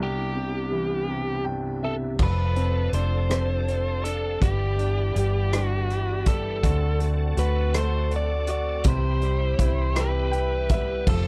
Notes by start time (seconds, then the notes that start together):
Already playing: C2 C3 B3 D4 E4
0.00 C2 G4
0.36 C3
0.72 E3
1.08 C3
1.45 G2 G5
1.82 C3 A4 E5
2.19 F1 F3 C4 D4 A4 D5 F5 A5, kick, crash
2.23 B4
2.56 C4 D4 A4, closed hi-hat
2.93 F1 F3 C4 D4 A4 C5, closed hi-hat
3.29 F3 C4 D4 A4, cross-stick, closed hi-hat
3.67 F3 C4 D4 A4, closed hi-hat
4.04 C4 D4 A4, closed hi-hat
4.40 G1 G2 D3 E3 G3 B3 G4 E5 B5, kick, closed hi-hat
4.78 E3 G3 B3 D4 G4, closed hi-hat
5.14 G1 E3 G3 B3 G4, closed hi-hat
5.52 G2 D3 E3 G3 B3 D4 G4, cross-stick, closed hi-hat
5.64 F#4
5.88 E3 G3 B3 G4, cross-stick, closed hi-hat
6.26 E3 G3 B3 G4 A4, kick, closed hi-hat
6.62 D2 D3 A3 C4 F#4 A4 D5 F#5 A5, kick, closed hi-hat
6.99 A3 C4 F#4, closed hi-hat
7.03 A3
7.37 D2 D3 A3 C4 F#4 B4, closed hi-hat
7.74 D3 A3 C4 F#4, cross-stick, closed hi-hat
7.78 C5
8.10 D3 A3 C4 F#4, closed hi-hat
8.16 D5
8.47 A3 C4 F#4 D5, closed hi-hat
8.84 C2 C3 E3 G3 E4 G4 E5 G5 B5, kick, closed hi-hat
8.88 C5
9.21 G3 E4, closed hi-hat
9.26 G3
9.58 C2 E3 G3 E4, kick, closed hi-hat
9.95 C3 E3 G3 E4 G4, cross-stick, closed hi-hat
10.01 B4
10.31 E3 G3 G5, closed hi-hat
10.36 E4
10.69 G3 B3 E4 E5, kick, closed hi-hat
10.74 B4
11.06 F1 D3 F3 C4 F4 A4 F5 C6 D6, kick, crash